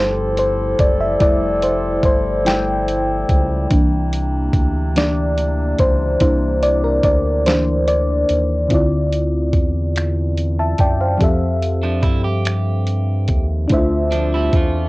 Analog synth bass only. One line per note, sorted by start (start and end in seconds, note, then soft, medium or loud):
0.00 0.75 G1 medium
0.80 1.17 F#1 loud
1.21 2.00 F1 medium
2.03 3.25 G1 medium
3.30 3.67 C#2 loud
3.71 4.50 C2 loud
4.54 5.75 D2 medium
5.79 6.17 C#2 loud
6.21 7.00 C2 loud
7.04 8.25 D2 medium
8.30 8.67 D#2 loud
8.71 9.55 D2 loud
9.54 10.75 E2 medium
10.80 11.17 F#2 loud
11.21 12.05 F2 medium
12.03 13.31 G2 medium
13.29 13.67 D#2 medium
13.71 14.50 D2 loud
14.53 14.89 E2 medium